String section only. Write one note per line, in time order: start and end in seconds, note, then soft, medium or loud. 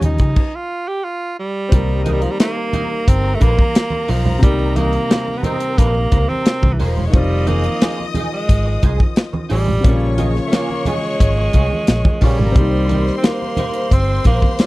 0.00 0.34 F4 medium
0.00 0.34 D#5 medium
0.00 0.34 G#5 medium
1.73 6.69 A#4 medium
1.73 6.69 A#5 loud
6.80 6.88 G#4 medium
6.80 6.88 G#5 medium
6.88 6.97 A#4 medium
6.88 6.97 A#5 medium
6.96 7.05 C5 medium
6.96 7.05 C6 medium
7.04 7.13 C#5 medium
7.04 7.13 C#6 medium
7.14 9.47 D#5 loud
7.14 9.47 D#6 loud
9.84 12.11 C#5 loud
9.84 12.11 C#6 loud
12.21 12.30 F4 medium
12.21 12.30 F5 medium
12.30 12.39 G4 medium
12.30 12.38 G5 medium
12.38 12.47 G#4 medium
12.38 12.47 G#5 medium
12.46 12.55 A#4 medium
12.46 12.55 A#5 loud
12.55 14.66 C5 loud
12.55 14.66 C6 loud